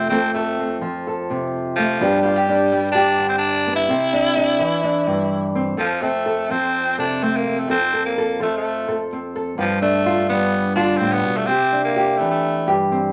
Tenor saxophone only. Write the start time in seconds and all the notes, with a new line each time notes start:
0.09 C4
0.34 A3
1.76 F3
2.22 G3
2.92 D4
3.29 C4
3.38 D4
3.75 E4
5.79 F3
6.01 A3
6.51 C4
6.99 D4
7.23 C4
7.36 A#3
7.59 A3
7.70 C4
8.05 A#3
8.42 A3
8.57 A3
9.60 F3
9.82 A3
10.29 B3
10.75 D4
10.97 C4
11.12 B3
11.37 A3
11.47 C4
11.84 A#3
12.18 A3
12.31 A3